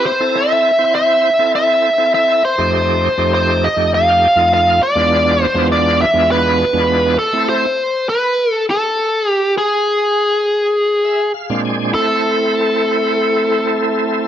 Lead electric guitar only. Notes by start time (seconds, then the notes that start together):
0.06 C5
0.36 E5
0.95 E5
1.55 E5
2.15 E5
2.45 C5
3.34 C5
3.64 D#5
3.94 F5
4.54 F5
4.83 D5
5.43 C5
5.72 D5
6.02 E5
6.31 B4
7.19 A4
7.49 C5
8.09 B4
8.51 A4
8.70 A4
9.30 G4
9.58 G#4
11.94 A4